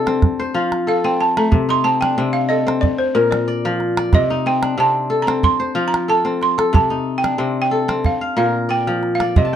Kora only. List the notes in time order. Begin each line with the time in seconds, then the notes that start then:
Already playing: C3 D4 D#4 A4
0.07 C4
0.40 C5
0.54 F3 F4
0.87 A4
1.04 C4
1.37 A3
1.52 C3
1.69 D#4
1.84 C4
2.02 D4
2.18 C3 C4
2.49 A4
2.67 C4
3.15 A#2 A#4
3.48 D5
3.65 F3
3.98 D5
4.14 C3
4.30 D#4
4.46 C4
4.63 D4
4.78 C3 C4
5.10 A4
5.27 C4
5.60 C5
5.75 F3 F4
6.08 A4
6.25 C4
6.58 A4
6.73 C3
6.90 D#4
7.24 D4
7.38 C3 C4
7.71 A4
7.88 C4
8.21 F5
8.37 A#2 A#4
8.69 D5
8.87 F3
9.20 D5
9.36 C3
9.45 A5